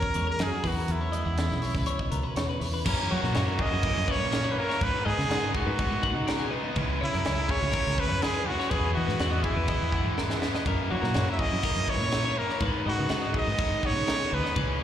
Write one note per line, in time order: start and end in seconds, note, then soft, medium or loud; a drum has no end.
0.00 0.17 F#3 medium
0.00 0.88 C#4 medium
0.00 0.26 A#4 loud
0.00 0.63 A#4 medium
0.00 0.15 A#4 medium
0.00 kick medium
0.14 0.27 E2 medium
0.14 0.40 G#3 medium
0.14 0.27 C#5 medium
0.14 closed hi-hat medium
0.27 0.40 A#4 medium
0.27 0.44 A#4 medium
0.39 0.51 F#2 medium
0.39 0.65 F#3 medium
0.39 0.50 G#4 medium
0.39 0.69 G#4 medium
0.39 snare loud
0.39 closed hi-hat medium
0.50 0.64 F#4 medium
0.63 0.76 E2 medium
0.63 2.58 E3 medium
0.63 0.76 B4 medium
0.63 kick medium
0.63 open hi-hat medium
0.68 0.94 F#4 medium
0.76 1.01 A#4 medium
0.88 1.22 E2 medium
0.88 1.01 B3 medium
0.88 closed hi-hat medium
0.92 2.38 E4 medium
1.01 1.13 C#4 medium
1.01 1.12 C#5 medium
1.12 2.58 G#3 medium
1.12 1.25 B3 medium
1.12 1.25 D#5 medium
1.12 closed hi-hat medium
1.25 1.48 E2 medium
1.25 1.38 C#4 soft
1.25 1.37 F#5 medium
1.37 1.50 B3 medium
1.37 1.62 D#5 medium
1.37 snare loud
1.37 closed hi-hat medium
1.50 1.62 B1 medium
1.50 1.87 C#4 soft
1.50 snare soft
1.62 1.74 C#5 medium
1.62 snare soft
1.62 open hi-hat medium
1.74 1.97 C#2 loud
1.74 1.86 B4 medium
1.74 kick medium
1.74 snare soft
1.86 2.58 B2 medium
1.86 2.12 C#4 medium
1.86 1.99 C#5 medium
1.86 closed hi-hat medium
1.99 2.11 D#5 medium
1.99 kick medium
2.12 2.23 C#2 medium
2.12 2.23 B3 medium
2.12 2.24 A#4 medium
2.12 closed hi-hat medium
2.23 2.61 C#4 soft
2.23 2.36 B4 medium
2.36 2.48 E2 loud
2.36 2.58 F#4 medium
2.36 2.49 C#5 medium
2.36 snare loud
2.36 closed hi-hat medium
2.49 2.62 B4 medium
2.60 2.72 E2 medium
2.60 2.82 E3 medium
2.60 2.73 C#5 medium
2.60 open hi-hat medium
2.74 2.85 B4 medium
2.85 3.59 F#2 medium
2.85 3.08 F#2 medium
2.85 3.33 C#3 medium
2.85 3.34 E3 medium
2.85 3.35 A#3 loud
2.85 3.36 C#4 loud
2.85 3.10 A#4 medium
2.85 kick loud
2.85 crash loud
2.85 crash medium
3.11 3.22 F#3 medium
3.11 3.63 F#4 medium
3.11 3.22 C#5 medium
3.23 3.34 A#2 medium
3.23 3.35 A#4 medium
3.23 snare soft
3.34 3.57 F#2 loud
3.34 3.83 C#3 medium
3.34 3.60 E3 medium
3.34 3.60 A#3 medium
3.34 3.58 C#4 medium
3.34 3.46 C#5 medium
3.34 snare loud
3.34 crash medium
3.46 3.59 A#4 medium
3.59 3.84 E3 medium
3.59 3.84 A#3 medium
3.59 3.85 C#4 medium
3.59 3.71 G#4 medium
3.59 4.12 D#5 loud
3.59 kick medium
3.71 3.83 F#2 loud
3.71 3.84 F#4 medium
3.83 4.32 F#2 medium
3.83 4.33 C#3 loud
3.83 4.09 E3 loud
3.83 4.09 A#3 loud
3.83 4.07 C#4 loud
3.83 4.08 A#4 medium
3.83 kick loud
3.83 crash medium
3.98 4.22 F#2 medium
4.08 4.58 E3 medium
4.08 4.57 A#3 medium
4.08 4.56 C#4 medium
4.08 4.20 B4 medium
4.08 4.53 C#5 loud
4.08 kick medium
4.20 4.58 A#2 medium
4.20 4.32 C#5 medium
4.32 4.44 A#4 medium
4.32 snare loud
4.32 crash medium
4.44 4.57 C#5 medium
4.52 4.61 B4 medium
4.57 4.69 F#2 loud
4.57 4.81 E3 medium
4.57 4.80 A#3 medium
4.57 4.80 C#4 medium
4.57 4.69 A#4 medium
4.57 4.85 A#4 loud
4.69 4.81 C#5 medium
4.69 snare soft
4.80 5.54 G#2 medium
4.80 5.03 G#2 loud
4.80 5.29 D#3 medium
4.80 5.30 G#3 loud
4.80 5.31 B3 loud
4.80 5.30 D#4 loud
4.80 5.05 B4 loud
4.80 5.07 B4 loud
4.80 kick loud
4.80 crash medium
5.05 5.17 G#2 loud
5.05 5.55 G#4 loud
5.05 5.18 D#5 medium
5.18 5.29 C#3 loud
5.18 5.30 B4 medium
5.18 snare soft
5.30 5.52 G#2 loud
5.30 5.78 D#3 medium
5.30 5.56 G#3 medium
5.30 5.55 B3 medium
5.30 5.53 D#4 medium
5.30 5.42 F#5 medium
5.30 snare loud
5.30 crash medium
5.42 5.54 D#5 medium
5.54 5.80 G#3 medium
5.54 5.80 B3 medium
5.54 5.79 D#4 medium
5.54 6.49 F#4 medium
5.54 5.67 G#4 medium
5.54 kick loud
5.66 5.78 G#2 loud
5.66 5.79 B4 medium
5.79 6.27 G#2 loud
5.79 6.28 D#3 loud
5.79 6.05 G#3 loud
5.79 6.04 B3 loud
5.79 6.02 D#4 loud
5.79 6.03 D#5 loud
5.79 kick loud
5.79 crash medium
5.92 6.16 G#2 medium
6.03 6.54 G#3 medium
6.03 6.53 B3 medium
6.03 6.51 D#4 medium
6.03 6.15 F#5 medium
6.03 kick medium
6.15 6.52 C#3 medium
6.15 6.27 D#5 medium
6.27 6.39 A#4 medium
6.27 snare loud
6.27 crash medium
6.39 6.52 G#4 medium
6.51 6.63 G#2 medium
6.51 6.76 G#3 medium
6.51 6.77 B3 medium
6.51 6.75 D#4 medium
6.51 6.64 B4 medium
6.64 6.77 D#5 medium
6.76 6.98 C#2 loud
6.76 7.24 C#3 medium
6.76 7.25 G#3 loud
6.76 7.25 C#4 medium
6.76 7.27 E4 loud
6.76 7.01 B4 loud
6.76 kick loud
6.76 crash medium
7.01 7.13 C#3 loud
7.01 7.52 E4 loud
7.01 7.13 C#5 medium
7.13 7.25 F#2 loud
7.13 7.25 A#4 medium
7.13 snare soft
7.25 7.48 C#2 loud
7.25 7.73 C#3 medium
7.25 7.50 G#3 medium
7.25 7.48 C#4 loud
7.25 7.48 E4 loud
7.25 7.36 C#5 medium
7.25 snare loud
7.25 crash medium
7.37 7.49 A#4 medium
7.48 7.74 G#3 medium
7.48 7.75 C#4 medium
7.48 7.76 E4 medium
7.48 7.60 G#4 medium
7.48 8.01 C#5 loud
7.48 kick medium
7.60 7.73 C#2 loud
7.60 7.73 F#4 medium
7.72 8.23 C#3 loud
7.72 8.00 G#3 loud
7.72 7.96 A#4 loud
7.72 kick loud
7.72 crash medium
7.76 7.99 C#4 loud
7.76 7.98 E4 loud
7.87 8.11 C#2 loud
7.96 8.48 C#4 medium
7.96 8.47 E4 medium
7.96 8.09 B4 medium
7.96 8.24 B4 loud
7.96 kick medium
8.01 8.49 G#3 medium
8.09 8.47 F#2 medium
8.09 8.21 C#5 medium
8.21 8.49 G#4 loud
8.21 8.33 A#4 medium
8.21 snare loud
8.21 crash medium
8.33 8.46 B4 medium
8.46 8.58 C#2 medium
8.46 8.71 G#3 medium
8.46 8.71 C#4 medium
8.46 8.73 E4 medium
8.46 8.72 F#4 loud
8.46 8.59 G#4 medium
8.59 8.70 C#5 medium
8.59 snare soft
8.70 8.93 E2 medium
8.70 9.20 E3 loud
8.70 9.20 G#3 medium
8.70 9.20 B3 loud
8.70 9.22 E4 loud
8.70 8.94 G#4 loud
8.70 8.95 B4 medium
8.70 kick loud
8.70 crash medium
8.94 9.07 E3 medium
8.94 9.45 F#4 loud
8.94 9.08 D#5 medium
9.07 9.19 G#2 loud
9.07 9.20 B4 medium
9.07 snare soft
9.19 9.42 E2 medium
9.19 9.68 E3 medium
9.19 9.45 G#3 medium
9.19 9.44 B3 medium
9.19 9.43 E4 loud
9.19 9.31 F#5 medium
9.19 snare loud
9.19 crash medium
9.31 9.44 D#5 medium
9.43 9.68 G#3 medium
9.43 9.69 B3 medium
9.43 10.41 E4 medium
9.43 9.70 E4 medium
9.43 9.56 G#4 medium
9.43 kick loud
9.56 9.67 E2 loud
9.56 9.69 B4 medium
9.68 10.17 E3 medium
9.68 9.94 G#3 loud
9.68 9.93 B3 medium
9.68 9.91 E4 loud
9.68 9.93 D#5 medium
9.68 kick loud
9.68 crash medium
9.82 10.06 E2 medium
9.92 10.42 G#3 medium
9.92 10.41 B3 medium
9.92 10.39 E4 medium
9.92 10.07 F#5 medium
9.92 kick medium
10.06 10.42 G#2 medium
10.06 10.18 D#5 medium
10.18 10.30 A#4 medium
10.18 snare medium
10.30 10.43 G#4 medium
10.30 snare medium
10.40 10.53 E2 medium
10.40 10.66 G#3 medium
10.40 10.65 B3 medium
10.40 10.64 E4 medium
10.40 10.55 B4 medium
10.40 snare medium
10.55 10.67 D#5 medium
10.55 snare medium
10.65 11.39 F#2 medium
10.65 10.88 F#2 loud
10.65 11.13 C#3 loud
10.65 11.14 E3 loud
10.65 11.15 A#3 loud
10.65 11.16 E4 loud
10.65 10.90 A#4 medium
10.65 kick loud
10.65 crash medium
10.90 11.02 F#3 medium
10.90 11.29 F#4 loud
10.90 11.02 C#5 medium
11.02 11.14 A#2 loud
11.02 11.14 A#4 medium
11.02 snare soft
11.14 11.37 F#2 loud
11.14 11.62 C#3 medium
11.14 11.39 E3 medium
11.14 11.39 A#3 medium
11.14 11.37 E4 medium
11.14 11.27 C#5 medium
11.14 snare loud
11.14 crash medium
11.27 11.39 A#4 medium
11.32 11.41 E5 medium
11.39 11.63 E3 medium
11.39 11.64 A#3 medium
11.39 11.64 E4 medium
11.39 11.52 G#4 medium
11.39 11.91 D#5 loud
11.39 kick medium
11.52 11.63 F#2 loud
11.52 11.64 F#4 medium
11.63 12.12 F#2 loud
11.63 12.13 C#3 loud
11.63 11.89 E3 loud
11.63 11.88 A#3 loud
11.63 11.86 E4 loud
11.63 11.89 A#4 medium
11.63 kick loud
11.63 crash medium
11.76 12.01 F#2 loud
11.87 12.38 E3 medium
11.87 12.37 A#3 medium
11.87 12.36 E4 medium
11.87 12.01 B4 medium
11.87 12.40 C#5 loud
11.87 kick medium
12.01 12.38 A#2 medium
12.01 12.14 C#5 medium
12.12 12.25 A#4 medium
12.12 snare loud
12.12 crash medium
12.25 12.38 C#5 medium
12.37 12.49 F#2 medium
12.37 12.61 E3 medium
12.37 12.61 A#3 medium
12.37 12.60 E4 medium
12.37 12.62 A#4 medium
12.37 12.51 A#4 medium
12.49 12.62 C#5 medium
12.49 snare soft
12.60 12.83 G#2 loud
12.60 13.34 G#2 medium
12.60 13.08 D#3 medium
12.60 13.10 G#3 medium
12.60 13.11 B3 loud
12.60 13.11 D#4 loud
12.60 12.86 B4 loud
12.60 kick loud
12.60 crash medium
12.86 12.97 G#2 loud
12.86 13.32 F#4 loud
12.86 12.98 D#5 medium
12.98 13.10 C#3 loud
12.98 13.10 B4 medium
13.09 13.32 G#2 loud
13.09 13.59 D#3 medium
13.09 13.37 G#3 medium
13.09 13.36 B3 medium
13.09 13.34 D#4 loud
13.09 13.22 F#5 medium
13.09 snare loud
13.09 crash medium
13.22 13.34 D#5 medium
13.34 13.59 G#3 medium
13.34 13.59 B3 medium
13.34 13.60 D#4 medium
13.34 13.47 G#4 medium
13.34 kick medium
13.38 13.88 D#5 loud
13.47 13.58 G#2 loud
13.47 13.59 B4 medium
13.58 14.08 G#2 medium
13.58 14.08 D#3 loud
13.58 13.85 G#3 loud
13.58 13.84 B3 loud
13.58 13.83 D#4 loud
13.58 13.84 D#5 medium
13.58 kick loud
13.58 crash medium
13.72 13.96 G#2 medium
13.83 14.33 G#3 medium
13.83 14.32 B3 medium
13.83 14.30 D#4 medium
13.83 14.36 C#5 loud
13.83 13.96 F#5 medium
13.83 kick medium
13.96 14.34 C#3 medium
13.96 14.08 D#5 medium
14.07 14.19 A#4 medium
14.07 snare loud
14.07 crash medium
14.19 14.30 G#4 medium
14.30 14.43 D#2 medium
14.30 14.55 G#3 medium
14.30 14.56 B3 medium
14.30 14.55 D#4 medium
14.30 14.43 B4 medium
14.30 14.58 B4 medium
14.44 14.55 D#5 medium
14.44 snare soft
14.55 14.78 C#2 loud
14.55 14.83 C#3 loud
14.55 14.83 E3 loud
14.55 14.83 G#3 loud
14.55 14.83 C#4 loud
14.55 14.80 B4 loud
14.55 kick loud
14.55 crash medium
14.80 14.83 C#5 medium